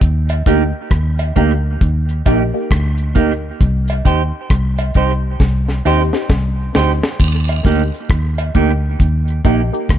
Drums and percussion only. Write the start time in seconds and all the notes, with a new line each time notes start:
0.01 kick, closed hi-hat
0.29 closed hi-hat, cowbell
0.46 kick, closed hi-hat
0.91 kick, cross-stick, closed hi-hat
1.19 closed hi-hat, cowbell
1.36 kick, closed hi-hat
1.81 kick, closed hi-hat
2.09 closed hi-hat
2.26 kick, closed hi-hat, cowbell
2.71 kick, cross-stick, closed hi-hat
2.98 closed hi-hat
3.15 kick, closed hi-hat
3.61 kick, closed hi-hat
3.88 closed hi-hat, cowbell
4.05 kick, closed hi-hat
4.50 kick, cross-stick, closed hi-hat
4.78 closed hi-hat, cowbell
4.94 kick, closed hi-hat
5.40 kick, snare
5.69 snare
5.86 cowbell
6.13 snare
6.30 kick, snare
6.75 snare
7.03 snare
7.20 kick, closed hi-hat, vibraslap
7.47 closed hi-hat, cowbell
7.65 kick, closed hi-hat
7.94 closed hi-hat
8.10 kick, cross-stick, closed hi-hat
8.38 closed hi-hat, cowbell
8.55 kick, closed hi-hat
9.00 kick, closed hi-hat
9.28 closed hi-hat
9.45 kick, closed hi-hat, cowbell
9.74 closed hi-hat
9.89 kick, cross-stick, closed hi-hat